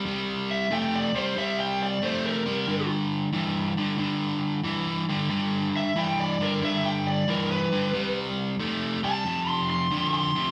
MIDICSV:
0, 0, Header, 1, 3, 480
1, 0, Start_track
1, 0, Tempo, 657174
1, 36, Time_signature, 4, 2, 24, 8
1, 7677, End_track
2, 0, Start_track
2, 0, Title_t, "Lead electric guitar"
2, 0, Program_c, 0, 29
2, 372, Note_on_c, 0, 76, 90
2, 519, Note_off_c, 0, 76, 0
2, 534, Note_on_c, 0, 79, 94
2, 680, Note_off_c, 0, 79, 0
2, 697, Note_on_c, 0, 74, 80
2, 841, Note_off_c, 0, 74, 0
2, 849, Note_on_c, 0, 72, 80
2, 997, Note_off_c, 0, 72, 0
2, 1010, Note_on_c, 0, 76, 96
2, 1157, Note_off_c, 0, 76, 0
2, 1168, Note_on_c, 0, 79, 90
2, 1317, Note_off_c, 0, 79, 0
2, 1335, Note_on_c, 0, 74, 80
2, 1480, Note_off_c, 0, 74, 0
2, 1492, Note_on_c, 0, 72, 104
2, 1639, Note_off_c, 0, 72, 0
2, 1649, Note_on_c, 0, 70, 95
2, 2107, Note_off_c, 0, 70, 0
2, 4212, Note_on_c, 0, 76, 86
2, 4359, Note_off_c, 0, 76, 0
2, 4368, Note_on_c, 0, 79, 99
2, 4517, Note_off_c, 0, 79, 0
2, 4528, Note_on_c, 0, 74, 102
2, 4677, Note_off_c, 0, 74, 0
2, 4693, Note_on_c, 0, 70, 79
2, 4839, Note_off_c, 0, 70, 0
2, 4853, Note_on_c, 0, 76, 105
2, 4999, Note_off_c, 0, 76, 0
2, 5008, Note_on_c, 0, 79, 92
2, 5157, Note_off_c, 0, 79, 0
2, 5163, Note_on_c, 0, 74, 85
2, 5314, Note_off_c, 0, 74, 0
2, 5329, Note_on_c, 0, 70, 104
2, 5477, Note_off_c, 0, 70, 0
2, 5488, Note_on_c, 0, 71, 106
2, 5947, Note_off_c, 0, 71, 0
2, 6606, Note_on_c, 0, 81, 89
2, 6924, Note_off_c, 0, 81, 0
2, 6924, Note_on_c, 0, 84, 81
2, 7075, Note_off_c, 0, 84, 0
2, 7085, Note_on_c, 0, 84, 93
2, 7391, Note_off_c, 0, 84, 0
2, 7408, Note_on_c, 0, 84, 107
2, 7663, Note_off_c, 0, 84, 0
2, 7677, End_track
3, 0, Start_track
3, 0, Title_t, "Overdriven electric guitar"
3, 0, Program_c, 1, 29
3, 38, Note_on_c, 1, 48, 77
3, 44, Note_on_c, 1, 55, 85
3, 486, Note_off_c, 1, 48, 0
3, 488, Note_off_c, 1, 55, 0
3, 516, Note_on_c, 1, 48, 80
3, 519, Note_on_c, 1, 57, 97
3, 808, Note_off_c, 1, 48, 0
3, 810, Note_off_c, 1, 57, 0
3, 837, Note_on_c, 1, 48, 59
3, 842, Note_on_c, 1, 55, 67
3, 977, Note_off_c, 1, 48, 0
3, 980, Note_off_c, 1, 55, 0
3, 994, Note_on_c, 1, 48, 86
3, 998, Note_on_c, 1, 55, 86
3, 1443, Note_off_c, 1, 48, 0
3, 1445, Note_off_c, 1, 55, 0
3, 1475, Note_on_c, 1, 48, 77
3, 1479, Note_on_c, 1, 57, 83
3, 1767, Note_off_c, 1, 48, 0
3, 1770, Note_off_c, 1, 57, 0
3, 1795, Note_on_c, 1, 48, 77
3, 1798, Note_on_c, 1, 55, 71
3, 1936, Note_off_c, 1, 48, 0
3, 1938, Note_off_c, 1, 55, 0
3, 1951, Note_on_c, 1, 43, 74
3, 1955, Note_on_c, 1, 50, 86
3, 2401, Note_off_c, 1, 43, 0
3, 2404, Note_off_c, 1, 50, 0
3, 2429, Note_on_c, 1, 43, 91
3, 2433, Note_on_c, 1, 52, 88
3, 2725, Note_off_c, 1, 43, 0
3, 2727, Note_off_c, 1, 52, 0
3, 2755, Note_on_c, 1, 43, 62
3, 2759, Note_on_c, 1, 50, 75
3, 2896, Note_off_c, 1, 43, 0
3, 2898, Note_off_c, 1, 50, 0
3, 2906, Note_on_c, 1, 43, 83
3, 2908, Note_on_c, 1, 50, 92
3, 3359, Note_off_c, 1, 43, 0
3, 3360, Note_off_c, 1, 50, 0
3, 3385, Note_on_c, 1, 43, 76
3, 3390, Note_on_c, 1, 52, 91
3, 3683, Note_off_c, 1, 43, 0
3, 3685, Note_off_c, 1, 52, 0
3, 3715, Note_on_c, 1, 43, 72
3, 3722, Note_on_c, 1, 50, 90
3, 3856, Note_off_c, 1, 43, 0
3, 3860, Note_off_c, 1, 50, 0
3, 3869, Note_on_c, 1, 43, 82
3, 3872, Note_on_c, 1, 50, 82
3, 4321, Note_off_c, 1, 43, 0
3, 4322, Note_off_c, 1, 50, 0
3, 4352, Note_on_c, 1, 43, 78
3, 4355, Note_on_c, 1, 52, 100
3, 4646, Note_off_c, 1, 43, 0
3, 4648, Note_off_c, 1, 52, 0
3, 4676, Note_on_c, 1, 43, 57
3, 4680, Note_on_c, 1, 50, 69
3, 4817, Note_off_c, 1, 43, 0
3, 4819, Note_off_c, 1, 50, 0
3, 4831, Note_on_c, 1, 43, 99
3, 4836, Note_on_c, 1, 50, 98
3, 5282, Note_off_c, 1, 43, 0
3, 5285, Note_off_c, 1, 50, 0
3, 5315, Note_on_c, 1, 43, 81
3, 5318, Note_on_c, 1, 52, 88
3, 5609, Note_off_c, 1, 43, 0
3, 5610, Note_off_c, 1, 52, 0
3, 5638, Note_on_c, 1, 43, 82
3, 5642, Note_on_c, 1, 50, 81
3, 5778, Note_off_c, 1, 43, 0
3, 5780, Note_off_c, 1, 50, 0
3, 5796, Note_on_c, 1, 48, 83
3, 5799, Note_on_c, 1, 55, 90
3, 6245, Note_off_c, 1, 48, 0
3, 6247, Note_off_c, 1, 55, 0
3, 6278, Note_on_c, 1, 48, 96
3, 6281, Note_on_c, 1, 57, 92
3, 6570, Note_off_c, 1, 48, 0
3, 6571, Note_off_c, 1, 57, 0
3, 6599, Note_on_c, 1, 48, 71
3, 6603, Note_on_c, 1, 55, 73
3, 6739, Note_off_c, 1, 48, 0
3, 6741, Note_off_c, 1, 55, 0
3, 6755, Note_on_c, 1, 41, 94
3, 6758, Note_on_c, 1, 48, 105
3, 7205, Note_off_c, 1, 41, 0
3, 7206, Note_off_c, 1, 48, 0
3, 7235, Note_on_c, 1, 41, 89
3, 7239, Note_on_c, 1, 50, 103
3, 7529, Note_off_c, 1, 41, 0
3, 7531, Note_off_c, 1, 50, 0
3, 7561, Note_on_c, 1, 41, 77
3, 7566, Note_on_c, 1, 48, 84
3, 7677, Note_off_c, 1, 41, 0
3, 7677, Note_off_c, 1, 48, 0
3, 7677, End_track
0, 0, End_of_file